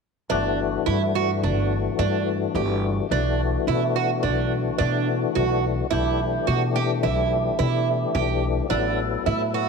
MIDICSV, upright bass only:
0, 0, Header, 1, 2, 480
1, 0, Start_track
1, 0, Key_signature, 1, "major"
1, 0, Tempo, 559701
1, 269, Time_signature, 5, 2, 24, 8
1, 8308, End_track
2, 0, Start_track
2, 0, Title_t, "Upright bass"
2, 0, Program_c, 0, 32
2, 271, Note_on_c, 0, 31, 78
2, 647, Note_off_c, 0, 31, 0
2, 748, Note_on_c, 0, 43, 89
2, 1229, Note_on_c, 0, 31, 79
2, 1242, Note_off_c, 0, 43, 0
2, 1607, Note_off_c, 0, 31, 0
2, 1704, Note_on_c, 0, 43, 91
2, 2084, Note_off_c, 0, 43, 0
2, 2183, Note_on_c, 0, 31, 96
2, 2563, Note_off_c, 0, 31, 0
2, 2668, Note_on_c, 0, 35, 82
2, 3046, Note_off_c, 0, 35, 0
2, 3149, Note_on_c, 0, 47, 92
2, 3632, Note_on_c, 0, 35, 78
2, 3645, Note_off_c, 0, 47, 0
2, 4009, Note_off_c, 0, 35, 0
2, 4119, Note_on_c, 0, 47, 93
2, 4493, Note_off_c, 0, 47, 0
2, 4595, Note_on_c, 0, 35, 94
2, 4970, Note_off_c, 0, 35, 0
2, 5078, Note_on_c, 0, 35, 82
2, 5452, Note_off_c, 0, 35, 0
2, 5556, Note_on_c, 0, 47, 91
2, 6034, Note_on_c, 0, 35, 84
2, 6047, Note_off_c, 0, 47, 0
2, 6409, Note_off_c, 0, 35, 0
2, 6513, Note_on_c, 0, 47, 92
2, 6888, Note_off_c, 0, 47, 0
2, 6988, Note_on_c, 0, 35, 94
2, 7364, Note_off_c, 0, 35, 0
2, 7467, Note_on_c, 0, 33, 86
2, 7843, Note_off_c, 0, 33, 0
2, 7947, Note_on_c, 0, 45, 86
2, 8308, Note_off_c, 0, 45, 0
2, 8308, End_track
0, 0, End_of_file